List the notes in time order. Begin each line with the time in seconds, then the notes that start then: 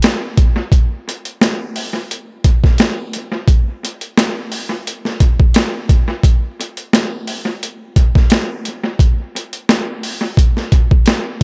0.02 snare, closed hi-hat
0.38 kick, closed hi-hat
0.72 kick, closed hi-hat
1.09 closed hi-hat
1.25 closed hi-hat
1.41 snare, closed hi-hat
1.76 open hi-hat
2.11 closed hi-hat
2.44 kick, closed hi-hat
2.64 kick, snare
2.78 snare, closed hi-hat
3.13 closed hi-hat
3.48 kick, closed hi-hat
3.85 closed hi-hat
4.01 closed hi-hat
4.18 snare, closed hi-hat
4.52 open hi-hat
4.87 closed hi-hat
5.05 snare
5.20 kick, closed hi-hat
5.40 kick
5.54 snare, closed hi-hat
5.89 kick, closed hi-hat
6.23 kick, closed hi-hat
6.61 closed hi-hat
6.77 closed hi-hat
6.93 snare, closed hi-hat
7.27 open hi-hat
7.63 closed hi-hat
7.96 kick, closed hi-hat
8.15 kick, snare
8.30 snare, closed hi-hat
8.65 closed hi-hat
8.99 kick, closed hi-hat
9.36 closed hi-hat
9.53 closed hi-hat
9.69 snare, closed hi-hat
10.03 open hi-hat
10.37 kick, closed hi-hat
10.57 snare
10.72 kick, closed hi-hat
10.91 kick
11.06 snare, closed hi-hat